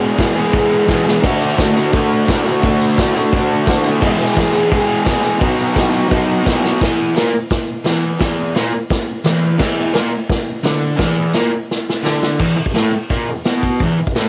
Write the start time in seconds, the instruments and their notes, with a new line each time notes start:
Already playing: overdriven electric guitar E2 B2 E3 G#3 B3 G#4
0.17 overdriven electric guitar E3 G#3 B3, kick, snare, open hi-hat
0.21 overdriven electric guitar G#4
0.34 overdriven electric guitar G#3 B3 G#4
0.39 overdriven electric guitar E3
0.52 overdriven electric guitar E3 G#3 B3, kick, open hi-hat
0.57 overdriven electric guitar G#4
0.85 overdriven electric guitar E2 B2 E3 G#3, kick
0.89 overdriven electric guitar B3 G#4, snare
1.04 overdriven electric guitar G#3 B3 G#4
1.08 overdriven electric guitar E3, snare
1.21 overdriven electric guitar D3 A3 D4, kick, crash
1.26 overdriven electric guitar F#4
1.41 tambourine
1.50 tambourine
1.55 overdriven electric guitar D3 A3 D4, kick, snare, open hi-hat, tambourine
1.60 overdriven electric guitar F#4
1.74 overdriven electric guitar D4 F#4, tambourine
1.79 overdriven electric guitar A3
1.92 overdriven electric guitar D3 A3 D4, kick, open hi-hat
1.96 overdriven electric guitar F#4
2.03 tambourine
2.26 overdriven electric guitar D3 A3 D4, kick, snare, open hi-hat, tambourine
2.31 overdriven electric guitar F#4
2.43 overdriven electric guitar D4 F#4, tambourine
2.48 overdriven electric guitar A3
2.61 overdriven electric guitar D3 A3 D4, kick, open hi-hat
2.65 overdriven electric guitar F#4
2.81 tambourine
2.89 tambourine
2.96 overdriven electric guitar D3 A3 D4, kick, snare, open hi-hat, tambourine
3.01 overdriven electric guitar F#4
3.14 overdriven electric guitar D4 F#4, tambourine
3.19 overdriven electric guitar A3
3.32 overdriven electric guitar D3 A3 D4, kick, open hi-hat
3.37 overdriven electric guitar F#4
3.42 tambourine
3.65 overdriven electric guitar D3 A3 D4, kick, open hi-hat, tambourine
3.69 overdriven electric guitar F#4, snare
3.76 tambourine
3.83 overdriven electric guitar D4 F#4, tambourine
3.88 overdriven electric guitar A3
3.99 overdriven electric guitar E2 B2 E3 G#3, kick
4.03 overdriven electric guitar B3 G#4, crash
4.18 tambourine
4.26 tambourine
4.34 overdriven electric guitar E3 G#3 B3, kick, open hi-hat, tambourine
4.38 overdriven electric guitar G#4, snare
4.52 overdriven electric guitar G#3 B3 G#4, tambourine
4.56 overdriven electric guitar E3
4.69 overdriven electric guitar E3 G#3 B3, kick, open hi-hat
4.73 overdriven electric guitar G#4
4.80 tambourine
5.03 overdriven electric guitar E2 B2 E3 G#3 B3, kick, open hi-hat, tambourine
5.08 overdriven electric guitar G#4, snare
5.16 tambourine
5.21 overdriven electric guitar G#3 B3 G#4, tambourine
5.26 overdriven electric guitar E3
5.38 overdriven electric guitar B2 F#3 B3 D#4, kick, open hi-hat, tambourine
5.43 overdriven electric guitar F#4
5.58 tambourine
5.67 tambourine
5.74 overdriven electric guitar F#3 B3 D#4, kick, open hi-hat, tambourine
5.78 overdriven electric guitar F#4, snare
5.86 tambourine
5.90 overdriven electric guitar D#4 F#4, tambourine
5.95 overdriven electric guitar B3
6.03 tambourine
6.08 overdriven electric guitar F#3 B3 D#4, kick, open hi-hat, tambourine
6.13 overdriven electric guitar F#4
6.20 tambourine
6.30 tambourine
6.43 overdriven electric guitar B2 F#3 B3 D#4, kick, open hi-hat, tambourine
6.48 overdriven electric guitar F#4, snare
6.56 tambourine
6.61 overdriven electric guitar D#4 F#4, snare
6.65 overdriven electric guitar B3, tambourine
6.80 overdriven electric guitar E2 E3, kick, snare, open hi-hat
7.15 overdriven electric guitar A#2 A#3, snare, open hi-hat, tambourine
7.50 kick, snare, open hi-hat
7.84 overdriven electric guitar E2 E3, snare, open hi-hat, tambourine
8.19 overdriven electric guitar E2 E3, kick, snare, open hi-hat
8.54 overdriven electric guitar A#2 A#3, snare, open hi-hat, tambourine
8.90 kick, snare, open hi-hat
9.24 overdriven electric guitar E2 E3, snare, open hi-hat, tambourine
9.58 overdriven electric guitar E2 E3, kick, snare, crash
9.92 overdriven electric guitar A#2 A#3, snare, open hi-hat, tambourine
10.30 kick, snare, open hi-hat
10.63 overdriven electric guitar D3 D4, snare, open hi-hat, tambourine
10.96 overdriven electric guitar E2 E3, kick, snare, open hi-hat
11.33 overdriven electric guitar A#2 A#3, snare, open hi-hat, tambourine
11.71 snare
11.89 snare
12.03 overdriven electric guitar D3 D4, snare, tambourine
12.23 snare
12.39 overdriven electric guitar E2 E3, kick, crash
12.58 muted overdriven electric guitar stroke
12.66 kick
12.74 overdriven electric guitar A2 A3, snare, open hi-hat, tambourine
12.92 muted overdriven electric guitar stroke
13.09 overdriven electric guitar A#2 A#3, kick, open hi-hat
13.28 overdriven electric guitar E2
13.44 overdriven electric guitar B2 B3, snare, open hi-hat, tambourine
13.63 kick
13.79 overdriven electric guitar E2 E3, kick, open hi-hat
13.99 muted overdriven electric guitar stroke
14.07 kick
14.15 overdriven electric guitar A2 A3, snare, open hi-hat, tambourine